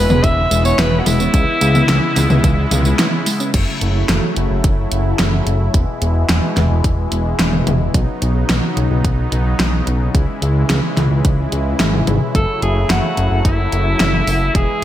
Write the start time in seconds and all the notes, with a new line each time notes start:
Already playing: C#3 G#3 B3 E4 B4
0.10 E1 B3, mid tom, tambourine
0.24 E1 E3 E5, kick, closed hi-hat, tambourine
0.51 E1 G#3, closed hi-hat, tambourine
0.65 B3 C#5, tambourine
0.79 E1 E3 B4, snare, closed hi-hat, tambourine
0.99 F#4
1.06 E1 G#3 E4, open hi-hat, mid tom, tambourine
1.20 B3, tambourine
1.34 C#2 C#3 E3 G#3 E4, kick, closed hi-hat, tambourine
1.61 C#2 G#3, closed hi-hat, tambourine
1.75 B3, mid tom, tambourine
1.89 C#2 E3, snare, closed hi-hat, tambourine
2.16 C#2 G#3, snare, open hi-hat, tambourine
2.30 C#2 B3, mid tom, tambourine
2.44 C#2 E3, kick, closed hi-hat, tambourine
2.71 C#2 B3, closed hi-hat, mid tom, tambourine
2.85 G#3, tambourine
2.99 E4, snare, closed hi-hat, tambourine
3.26 G#3, open hi-hat, tambourine
3.40 C#4, tambourine
3.54 F#1 C#3 F#3 A3 E4, kick, closed hi-hat, crash
3.81 F#1, closed hi-hat
4.09 F#1, snare, closed hi-hat
4.36 F#1, closed hi-hat
4.50 F#1
4.64 F#1, kick, closed hi-hat
4.92 F#1, closed hi-hat
5.19 F#1, snare, closed hi-hat
5.47 F#1, closed hi-hat
5.74 E1 B2 E3 G#3, kick, closed hi-hat
6.02 E1, closed hi-hat
6.29 E1, snare, closed hi-hat
6.57 E1, snare, closed hi-hat, mid tom
6.71 E1
6.84 E1, kick, closed hi-hat
7.12 E1, closed hi-hat
7.39 E1, snare, closed hi-hat
7.53 mid tom
7.67 E1, closed hi-hat, mid tom
7.94 B1 C#3 F#3 B3 D#4, kick, closed hi-hat
8.22 B1, closed hi-hat
8.49 B1, snare, closed hi-hat
8.77 B1, closed hi-hat
8.91 B1
9.05 B1, kick, closed hi-hat
9.32 B1, closed hi-hat
9.60 B1, snare, closed hi-hat
9.87 B1, closed hi-hat
10.15 C#2 E3 G#3 E4, kick, closed hi-hat
10.42 C#2, closed hi-hat
10.70 C#2, snare, closed hi-hat
10.97 C#2, snare, closed hi-hat, mid tom
11.11 C#2
11.25 C#2, kick, closed hi-hat
11.52 C#2, closed hi-hat
11.80 G#1, snare, closed hi-hat
11.94 mid tom
12.07 G#1, closed hi-hat, mid tom
12.35 F#1 F#3 A3 A4, kick, closed hi-hat
12.62 F#1 G#4, closed hi-hat
12.90 F#1 F#4, snare, closed hi-hat
13.17 F#1, closed hi-hat
13.31 F#1
13.45 F#1 E4, kick, closed hi-hat
13.72 F#1, closed hi-hat
14.00 F#1, snare, closed hi-hat
14.27 F#1, open hi-hat
14.55 E1 B2 E3 G#3 E4 G#4, kick, closed hi-hat